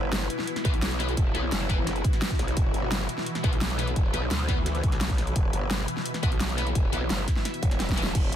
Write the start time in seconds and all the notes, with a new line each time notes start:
Already playing: G1 B2 E3 E4 F#4
0.13 snare, closed hi-hat
0.30 closed hi-hat
0.39 snare
0.47 closed hi-hat
0.56 snare, closed hi-hat
0.65 B1 B3 E4 B4, kick, closed hi-hat
0.74 closed hi-hat
0.82 snare, closed hi-hat
0.91 closed hi-hat
0.99 B3 E4 B4, snare, closed hi-hat
1.09 closed hi-hat
1.17 E1, kick, closed hi-hat
1.34 B1 B3 E4 B4, closed hi-hat
1.52 F#1, snare, closed hi-hat
1.69 B3 E4 B4, kick, snare, closed hi-hat
1.87 snare, closed hi-hat
1.96 closed hi-hat
2.04 kick, closed hi-hat
2.13 snare, closed hi-hat
2.22 snare, closed hi-hat
2.31 kick, snare, closed hi-hat
2.39 B1, snare, closed hi-hat
2.48 closed hi-hat
2.57 E1 B4, kick, closed hi-hat
2.74 G1, closed hi-hat
2.92 snare, closed hi-hat
3.09 closed hi-hat
3.18 snare
3.26 closed hi-hat
3.35 snare, closed hi-hat
3.44 B1 B3 E4 B4, kick, closed hi-hat
3.53 closed hi-hat
3.61 snare, closed hi-hat
3.70 closed hi-hat
3.79 B3 E4 B4, snare, closed hi-hat
3.88 closed hi-hat
3.96 kick, closed hi-hat
4.13 B1 B3 E4 B4, closed hi-hat
4.31 D2, snare, closed hi-hat
4.48 B3 E4 B4, kick, snare, closed hi-hat
4.66 snare, closed hi-hat
4.75 closed hi-hat
4.83 B1, kick, closed hi-hat
4.92 snare, closed hi-hat
5.01 snare, closed hi-hat
5.10 kick, snare, closed hi-hat
5.18 snare, closed hi-hat
5.27 closed hi-hat
5.36 E1 E5, kick, closed hi-hat
5.53 G1, closed hi-hat
5.71 snare, closed hi-hat
5.88 closed hi-hat
5.97 snare
6.06 closed hi-hat
6.14 snare, closed hi-hat
6.23 B1 B3 E4 B4, kick, closed hi-hat
6.32 closed hi-hat
6.40 snare, closed hi-hat
6.49 closed hi-hat
6.58 B3 E4 B4, snare, closed hi-hat
6.67 closed hi-hat
6.75 E1, kick, closed hi-hat
6.93 B1 B3 E4 B4, closed hi-hat
7.10 G1, snare, closed hi-hat
7.28 kick, snare, closed hi-hat
7.36 snare
7.45 snare, closed hi-hat
7.54 closed hi-hat
7.63 E1, kick, closed hi-hat
7.71 snare, closed hi-hat
7.80 snare, closed hi-hat
7.89 kick, snare, closed hi-hat
7.97 B3 E4 B4, closed hi-hat
8.03 snare, closed hi-hat
8.15 E1, kick, closed hi-hat, crash
8.32 closed hi-hat